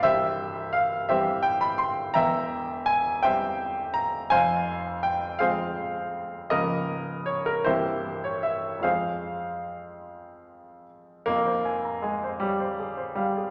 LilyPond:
<<
  \new Staff \with { instrumentName = "Grand piano" } { \time 6/8 \key c \major \tempo 4. = 53 <g' c'' e''>4 f''8 <g' c'' e''>8 g''16 b''16 c'''8 | \key f \minor <e'' g'' bes''>4 aes''8 <c'' e'' g''>4 bes''8 | <c'' f'' aes''>4 g''8 <aes' c'' f''>8 r4 | <bes' ees''>4 des''16 bes'16 <e' g' c''>8. des''16 e''8 |
<aes' c'' f''>2~ <aes' c'' f''>8 r8 | bes4 aes8 g4 g8 | }
  \new Staff \with { instrumentName = "Grand piano" } { \clef bass \time 6/8 \key c \major <c,, c,>4. <e g c'>4. | \key f \minor <e,, e,>4. <g c'>4. | <f,, f,>4. <f aes c'>4. | <des,, des, f bes>4. <c,, c, e bes c'>4. |
<f, f aes c'>2. | <f,, f,>16 c''16 aes''16 bes''16 aes''16 c''16 des''16 c''16 aes'16 c''16 f''16 aes'16 | }
>>